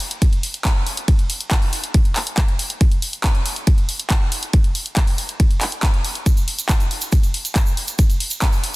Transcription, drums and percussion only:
0.00 open hi-hat
0.11 closed hi-hat
0.22 kick, closed hi-hat, ride
0.33 closed hi-hat
0.43 open hi-hat
0.54 closed hi-hat
0.65 kick, clap, closed hi-hat, ride
0.87 open hi-hat
0.97 closed hi-hat
1.08 kick, closed hi-hat, ride
1.19 closed hi-hat
1.30 open hi-hat
1.41 closed hi-hat
1.51 kick, clap, closed hi-hat, ride
1.62 open hi-hat
1.73 open hi-hat
1.84 closed hi-hat
1.94 kick, closed hi-hat, ride
2.05 closed hi-hat
2.16 clap, open hi-hat
2.27 closed hi-hat
2.38 kick, clap, closed hi-hat, ride
2.48 closed hi-hat
2.59 open hi-hat
2.70 closed hi-hat
2.81 kick, closed hi-hat, ride
2.92 closed hi-hat
3.02 open hi-hat
3.13 closed hi-hat
3.24 kick, clap, closed hi-hat, ride
3.35 closed hi-hat
3.46 open hi-hat
3.56 closed hi-hat
3.67 kick, closed hi-hat, ride
3.78 closed hi-hat
3.89 open hi-hat
4.00 closed hi-hat
4.10 kick, clap, closed hi-hat, ride
4.32 open hi-hat
4.43 closed hi-hat
4.53 kick, closed hi-hat, ride
4.64 closed hi-hat
4.75 open hi-hat
4.86 closed hi-hat
4.97 kick, clap, closed hi-hat, ride
5.07 open hi-hat
5.18 open hi-hat
5.29 closed hi-hat
5.40 kick, closed hi-hat, ride
5.51 closed hi-hat
5.61 clap, open hi-hat
5.72 closed hi-hat
5.83 kick, clap, closed hi-hat, ride
5.94 closed hi-hat
6.04 open hi-hat
6.15 closed hi-hat
6.26 kick, closed hi-hat, ride, shaker
6.37 closed hi-hat, shaker
6.48 open hi-hat
6.59 closed hi-hat, shaker
6.69 kick, clap, closed hi-hat, ride, shaker
6.80 closed hi-hat, shaker
6.91 open hi-hat
7.01 closed hi-hat, shaker
7.12 kick, closed hi-hat, ride, shaker
7.23 closed hi-hat, shaker
7.34 open hi-hat
7.45 closed hi-hat, shaker
7.56 kick, clap, closed hi-hat, ride, shaker
7.66 shaker
7.77 open hi-hat
7.88 closed hi-hat, shaker
7.99 kick, closed hi-hat, ride, shaker
8.10 closed hi-hat, shaker
8.20 open hi-hat
8.31 closed hi-hat, shaker
8.41 kick, clap, closed hi-hat, ride, shaker
8.52 open hi-hat, shaker
8.64 open hi-hat

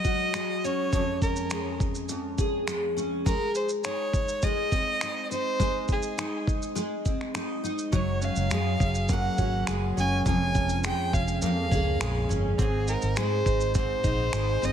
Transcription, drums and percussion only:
0.04 kick, shaker
0.34 finger snap, shaker
0.65 shaker
0.93 kick, shaker
1.22 kick, shaker
1.36 shaker
1.50 finger snap, shaker
1.80 kick, shaker
1.95 shaker
2.09 shaker
2.38 kick, shaker
2.68 finger snap, shaker
2.98 shaker
3.26 kick, shaker
3.55 shaker
3.69 shaker
3.84 finger snap, shaker
4.14 kick, shaker
4.28 shaker
4.42 kick, shaker
4.72 kick, shaker
5.01 finger snap, shaker
5.31 shaker
5.60 kick, shaker
5.88 kick, shaker
6.03 shaker
6.18 finger snap, shaker
6.47 kick, shaker
6.62 shaker
6.76 shaker
7.06 kick, shaker
7.21 finger snap
7.35 finger snap, shaker
7.65 shaker
7.78 shaker
7.93 kick, shaker
8.22 shaker
8.36 shaker
8.51 finger snap, shaker
8.80 kick, shaker
8.95 shaker
9.09 kick, shaker
9.38 kick, shaker
9.67 finger snap, shaker
9.98 shaker
10.26 kick, shaker
10.55 kick, shaker
10.69 shaker
10.84 finger snap, shaker
11.13 kick, shaker
11.28 shaker
11.42 shaker
11.72 kick, shaker
12.01 finger snap, shaker
12.31 shaker
12.59 kick, shaker
12.88 shaker
13.02 shaker
13.16 finger snap, shaker
13.46 kick, shaker
13.61 shaker
13.74 kick, shaker
14.04 kick, shaker
14.33 finger snap, shaker
14.63 shaker

